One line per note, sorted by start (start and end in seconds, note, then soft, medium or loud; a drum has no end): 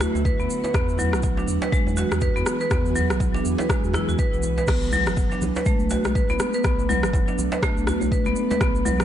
0.00 0.71 D3 medium
0.00 0.71 A3 medium
0.00 0.70 E4 medium
0.00 4.64 F#4 medium
0.00 0.14 F#4 medium
0.00 cross-stick medium
0.00 djembe bass medium
0.00 shaker medium
0.15 0.31 D2 loud
0.15 djembe tone medium
0.15 shaker soft
0.25 0.33 B4 loud
0.25 kick medium
0.25 shaker soft
0.40 0.47 D2 medium
0.40 0.45 B3 medium
0.40 shaker soft
0.50 shaker medium
0.64 0.69 B4 medium
0.64 djembe slap medium
0.64 djembe tone medium
0.64 shaker soft
0.74 1.15 E2 loud
0.74 4.64 E3 medium
0.74 9.05 B3 medium
0.74 0.82 B3 loud
0.74 4.64 G#4 medium
0.74 kick loud
0.74 cross-stick medium
0.74 shaker soft
0.89 shaker soft
0.98 1.12 F#3 medium
0.98 djembe tone medium
0.98 djembe bass medium
0.98 shaker medium
1.13 1.43 B1 medium
1.13 cross-stick medium
1.13 shaker soft
1.23 1.31 F#3 medium
1.23 kick medium
1.23 shaker soft
1.37 1.47 D4 medium
1.37 djembe slap medium
1.37 shaker soft
1.47 1.58 E2 medium
1.47 djembe tone medium
1.47 shaker medium
1.62 1.72 B4 medium
1.62 djembe slap loud
1.62 shaker soft
1.72 1.80 G#3 loud
1.72 kick loud
1.72 shaker soft
1.87 2.03 E2 medium
1.87 djembe tone medium
1.87 shaker soft
1.97 2.10 F#4 medium
1.97 djembe slap medium
1.97 shaker medium
2.11 2.28 E2 medium
2.11 cross-stick medium
2.11 shaker soft
2.21 2.30 B4 loud
2.21 kick medium
2.21 shaker soft
2.36 2.44 E2 medium
2.36 2.42 B3 medium
2.36 djembe tone medium
2.36 shaker soft
2.46 cross-stick medium
2.46 shaker medium
2.61 2.66 B4 loud
2.61 shaker soft
2.71 3.11 E2 medium
2.71 2.79 B3 loud
2.71 kick loud
2.71 cross-stick medium
2.71 djembe tone medium
2.71 shaker soft
2.86 shaker soft
2.95 3.09 F#3 medium
2.95 djembe bass medium
2.95 shaker medium
3.10 3.40 B1 medium
3.10 cross-stick medium
3.10 shaker soft
3.20 3.28 F#3 medium
3.20 kick loud
3.20 djembe tone medium
3.20 shaker soft
3.34 3.44 D4 medium
3.34 djembe slap medium
3.34 shaker soft
3.45 3.55 E2 medium
3.45 shaker medium
3.58 3.68 B4 medium
3.58 djembe slap loud
3.58 djembe tone medium
3.58 shaker soft
3.69 3.77 G#3 medium
3.69 kick loud
3.69 cross-stick medium
3.69 shaker medium
3.84 4.00 E2 medium
3.84 shaker soft
3.93 4.02 E4 medium
3.93 cross-stick medium
3.93 djembe slap medium
3.93 djembe bass medium
3.93 shaker medium
4.08 4.16 E2 medium
4.08 4.18 F#4 medium
4.08 djembe tone medium
4.08 shaker soft
4.19 4.32 B4 medium
4.19 kick loud
4.19 shaker soft
4.33 4.63 B1 medium
4.33 4.42 B4 medium
4.33 shaker soft
4.43 djembe tone medium
4.43 shaker medium
4.58 4.63 B4 medium
4.58 djembe slap medium
4.58 shaker soft
4.67 5.08 B1 medium
4.67 9.05 A3 medium
4.67 4.76 B3 medium
4.67 9.05 D4 medium
4.67 kick loud
4.67 cross-stick medium
4.67 crash medium
4.67 low conga loud
4.67 shaker medium
4.82 shaker soft
4.92 5.05 F#3 medium
4.92 high conga loud
4.92 djembe bass loud
4.92 shaker medium
5.06 5.37 F#1 medium
5.06 cross-stick medium
5.06 djembe tone medium
5.06 low conga loud
5.06 shaker soft
5.17 5.25 F#3 medium
5.17 kick loud
5.17 shaker soft
5.31 5.41 D4 medium
5.31 djembe slap medium
5.31 shaker soft
5.42 5.52 B1 medium
5.42 djembe tone medium
5.42 low conga loud
5.42 shaker medium
5.56 5.65 B4 medium
5.56 djembe slap loud
5.56 shaker soft
5.65 5.74 A3 loud
5.65 kick loud
5.65 high conga medium
5.65 shaker medium
5.80 5.97 B1 medium
5.80 shaker soft
5.90 6.04 F#4 medium
5.90 djembe slap medium
5.90 djembe tone medium
5.90 shaker medium
6.04 6.22 B1 loud
6.04 cross-stick medium
6.04 high conga loud
6.04 shaker soft
6.15 6.23 B4 medium
6.15 kick loud
6.15 shaker soft
6.29 6.37 B1 medium
6.29 6.35 B3 medium
6.29 djembe tone medium
6.29 shaker soft
6.39 cross-stick medium
6.39 high conga medium
6.39 shaker loud
6.53 6.60 B4 medium
6.53 shaker soft
6.64 7.05 B1 medium
6.64 6.72 B3 loud
6.64 kick loud
6.64 cross-stick medium
6.64 low conga loud
6.64 shaker soft
6.79 djembe tone medium
6.79 shaker soft
6.89 7.02 F#3 loud
6.89 high conga loud
6.89 djembe bass medium
6.89 shaker medium
7.03 7.34 F#1 medium
7.03 cross-stick medium
7.03 low conga loud
7.03 shaker soft
7.13 7.21 F#3 medium
7.13 kick loud
7.13 djembe tone medium
7.13 shaker soft
7.28 7.37 D4 medium
7.28 djembe slap medium
7.28 shaker soft
7.38 7.49 B1 medium
7.38 low conga loud
7.38 shaker medium
7.52 7.62 B4 medium
7.52 djembe slap loud
7.52 shaker soft
7.62 7.71 A3 loud
7.62 kick loud
7.62 cross-stick loud
7.62 djembe tone medium
7.62 shaker medium
7.77 7.94 B1 medium
7.77 shaker soft
7.87 8.00 F#4 medium
7.87 cross-stick medium
7.87 djembe bass medium
7.87 shaker medium
8.01 8.18 B1 medium
8.01 djembe tone medium
8.01 shaker soft
8.12 8.20 B4 loud
8.12 kick loud
8.12 shaker soft
8.26 8.34 B1 medium
8.26 8.32 B3 loud
8.26 high conga medium
8.26 shaker soft
8.36 shaker medium
8.51 8.56 B4 loud
8.51 djembe slap medium
8.51 djembe tone medium
8.51 high conga medium
8.51 shaker soft
8.61 9.02 B1 medium
8.61 8.69 B3 loud
8.61 kick loud
8.61 cross-stick medium
8.61 low conga loud
8.61 shaker medium
8.75 shaker soft
8.85 8.99 F#3 loud
8.85 high conga loud
8.85 djembe tone medium
8.85 djembe bass medium
8.85 shaker loud
9.00 9.05 F#1 medium
9.00 cross-stick medium
9.00 low conga loud
9.00 shaker soft